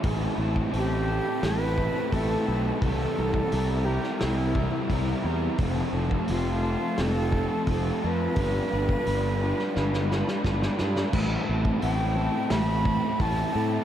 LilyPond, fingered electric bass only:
\new Staff \with { instrumentName = "Fingered electric bass" } { \clef bass \time 4/4 \key a \minor \tempo 4 = 86 a,,8 a,,8 a,,4 a,,4 a,,8 b,,8 | c,8 c,8 c,4 c,4 c,8 e,8 | f,,8 f,,8 f,,4 f,,4 f,,8 f,8 | g,,8 g,,8 g,,4 g,,4 g,,8 g,8 |
a,,8 a,,8 a,,4 a,,4 a,,8 a,8 | }